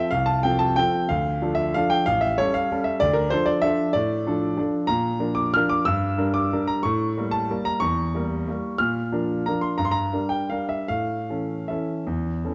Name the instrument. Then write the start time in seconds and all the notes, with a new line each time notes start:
grand piano
Already playing: E5
0.11 C2 F5
0.26 A5
0.43 F3 C4 A4 G5
0.59 A5
0.76 F3 C4 A4 G5
1.09 D2 F5
1.42 F3 D4 A4
1.55 E5
1.74 F3 D4 A4 F5
1.90 G5
2.06 A1 F5
2.21 E5
2.38 G3 C#4 A4 C#5
2.54 F5
2.72 G3 C#4 A4
2.84 E5
3.00 D2 D5
3.13 A#4
3.30 F3 D4 A4 C5
3.46 D5
3.62 F3 D4 A4 E5
3.93 A2 D5
4.27 F3 D4 A4
4.57 F3 D4 A4
4.87 A#2 A#5
5.20 F3 D4 A#4
5.35 D6
5.54 F3 D4 A#4 F6
5.69 D6
5.85 G2 E6
6.18 G3 D4 A#4
6.34 D6
6.53 G3 D4 A#4
6.67 A#5
6.83 A2 C#6
7.17 G3 A#3 A#4
7.31 A5
7.50 G3 A#3 A#4
7.65 A#5
7.80 E2 C#6
8.14 G3 A#3 A#4
8.48 G3 A#3 A#4
8.78 A#2 F6
9.12 F3 D4 A#4
9.46 F3 D4 A#4 A#5
9.61 C6
9.78 G2 A#5
9.85 C6
9.91 A#5
10.13 G3 D4 A#4
10.29 G5
10.50 G3 D4 A#4 F5
10.69 E5
10.88 A2 F5
11.30 E3 C#4 A4
11.68 E3 C#4 A4 E5
12.07 E2
12.45 E3 C#4 A4